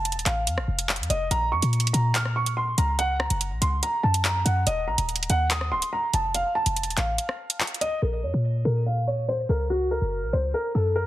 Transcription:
Already playing: 808-style bass F1, grand piano A5
0.05 closed hi-hat
0.12 808-style bass D#1, closed hi-hat
0.19 closed hi-hat
0.26 808-style bass A1, grand piano F5, clap, closed hi-hat
0.47 808-style bass F2, closed hi-hat
0.58 808-style bass A1, cross-stick
0.68 808-style bass F1
0.79 closed hi-hat
0.89 clap, closed hi-hat
0.96 808-style bass F2, closed hi-hat
1.03 closed hi-hat
1.10 808-style bass F1, grand piano D#5, closed hi-hat
1.31 808-style bass A#1, grand piano A#5, closed hi-hat
1.52 808-style bass F2, grand piano C#6
1.62 808-style bass A#2, closed hi-hat
1.73 closed hi-hat
1.80 closed hi-hat
1.87 closed hi-hat
1.93 808-style bass A#2, grand piano A#5, closed hi-hat
2.15 grand piano F6, clap, closed hi-hat
2.25 cross-stick
2.36 grand piano C#6
2.46 closed hi-hat
2.57 grand piano C6
2.78 808-style bass C#2, grand piano A#5, closed hi-hat
2.99 grand piano F#5, closed hi-hat
3.19 grand piano A#5, cross-stick
3.30 808-style bass F#1, closed hi-hat
3.41 closed hi-hat
3.51 808-style bass A#1
3.62 808-style bass C#2, grand piano C6, closed hi-hat
3.83 grand piano A#5, closed hi-hat
4.03 808-style bass F#2, grand piano A5
4.14 closed hi-hat
4.24 grand piano A#5, clap, closed hi-hat
4.45 808-style bass F#2, grand piano F#5, closed hi-hat
4.67 808-style bass D#1, grand piano D#5, closed hi-hat
4.88 808-style bass A#1, grand piano A#5
4.98 808-style bass D#1, closed hi-hat
5.09 closed hi-hat
5.16 closed hi-hat
5.23 closed hi-hat
5.30 808-style bass D#2, grand piano F#5, closed hi-hat
5.51 grand piano D#6, clap, closed hi-hat
5.61 cross-stick
5.72 808-style bass C#1, grand piano C6
5.82 closed hi-hat
5.93 grand piano A#5
6.14 808-style bass F1, grand piano A5, closed hi-hat
6.34 grand piano F5, closed hi-hat
6.55 grand piano A5
6.66 808-style bass F1, closed hi-hat
6.76 closed hi-hat
6.83 808-style bass D#1, closed hi-hat
6.90 closed hi-hat
6.97 808-style bass A1, grand piano F5, clap, closed hi-hat
7.18 closed hi-hat
7.29 cross-stick
7.50 closed hi-hat
7.60 clap, closed hi-hat
7.67 closed hi-hat
7.74 closed hi-hat
7.81 grand piano D#5, closed hi-hat
8.02 808-style bass A#1, grand piano A#4
8.23 808-style bass F2, grand piano C#5
8.34 808-style bass A#2
8.65 808-style bass A#2, grand piano A#4
8.86 grand piano F5
9.07 grand piano C#5
9.28 grand piano C5
9.49 808-style bass C#2, grand piano A#4
9.70 grand piano F#4
9.91 grand piano A#4
10.02 808-style bass F#1
10.23 808-style bass A#1
10.33 808-style bass C#2, grand piano C5
10.54 grand piano A#4
10.75 808-style bass F#2, grand piano A4
10.96 grand piano A#4

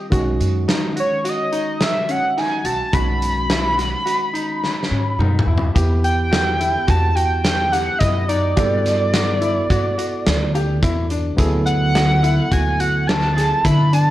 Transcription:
0.10 upright bass B1, tine electric piano D#3 G#3 C#4 F#4, grand piano F#4, kick, closed hi-hat
0.40 upright bass F#2, closed hi-hat
0.68 grand piano D#4, snare, closed hi-hat
0.96 grand piano F#4, analog synth lead C#5, closed hi-hat
1.24 grand piano F#4, closed hi-hat
1.29 analog synth lead D#5
1.52 grand piano D#4, closed hi-hat
1.81 analog synth lead E5, snare, closed hi-hat
2.09 grand piano C#4, analog synth lead F#5, closed hi-hat
2.37 grand piano D#4, analog synth lead G#5, snare, closed hi-hat
2.64 upright bass B1, grand piano F#4, analog synth lead A5, closed hi-hat
2.93 upright bass B1, tine electric piano D#3 G#3 C#4 F#4, grand piano F#4, analog synth lead B5, kick, closed hi-hat
3.22 closed hi-hat
3.50 grand piano E4, snare, closed hi-hat
3.77 grand piano F#4, snare, closed hi-hat
4.05 grand piano F#4, closed hi-hat
4.34 grand piano D#4, closed hi-hat
4.64 snare
4.83 snare
4.90 upright bass G#2, grand piano C#4
5.19 upright bass F#2, grand piano D#4, mid tom
5.39 mid tom
5.46 upright bass E2, grand piano E4
5.57 floor tom
5.75 upright bass E2, tine electric piano B3 E4 G4, grand piano G4, kick, closed hi-hat
6.04 analog synth lead G5, closed hi-hat
6.31 grand piano F#4, snare, closed hi-hat
6.59 grand piano E4, closed hi-hat
6.87 upright bass E2, grand piano F#4, analog synth lead A5, kick, closed hi-hat
7.15 grand piano F#4, analog synth lead G5, closed hi-hat
7.44 analog synth lead G5, snare, closed hi-hat
7.72 grand piano G4, analog synth lead F#5, snare, closed hi-hat
7.99 upright bass F#2, grand piano E4, analog synth lead D#5, kick, closed hi-hat
8.28 grand piano D#4, analog synth lead D5, closed hi-hat
8.56 upright bass G2, tine electric piano B3 E4 F#4 A4, grand piano G4, kick, closed hi-hat
8.86 snare, closed hi-hat
9.14 grand piano F#4, snare, closed hi-hat
9.41 grand piano E4, closed hi-hat
9.70 upright bass G2, grand piano F#4, kick, closed hi-hat
9.98 grand piano F#4, closed hi-hat
10.26 upright bass D2, snare, closed hi-hat
10.55 grand piano G4, closed hi-hat
10.82 upright bass E2, grand piano E4, kick, closed hi-hat
11.10 grand piano D4, closed hi-hat
11.36 upright bass D2, tine electric piano F#3 B3 E4 A4, grand piano G#4, kick, closed hi-hat
11.66 analog synth lead F#5, closed hi-hat
11.95 grand piano F#4, snare, closed hi-hat
12.23 grand piano E4, closed hi-hat
12.51 upright bass D2, grand piano F#4, analog synth lead G#5, kick, closed hi-hat
12.80 grand piano F#4, analog synth lead F#5, closed hi-hat
13.07 analog synth lead A5, snare, closed hi-hat
13.36 grand piano G#4, snare, closed hi-hat
13.64 upright bass D3, grand piano E4, analog synth lead B5, kick, closed hi-hat
13.93 grand piano D4, analog synth lead A5, closed hi-hat

